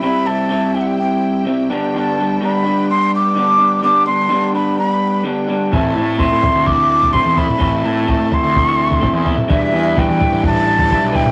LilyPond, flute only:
\new Staff \with { instrumentName = "Flute" } { \time 4/4 \key a \minor \tempo 4 = 127 b''8 a''4 g''32 fis''32 g''16 g''4 r4 | a''4 b''4 c'''8 d'''4. | d'''8 c'''4 b''8 b''4 r4 | a''4 c'''4 d'''4 c'''8 b''8~ |
b''8 a''4 c'''2 r8 | e''4 g''4 a''4. g''8 | }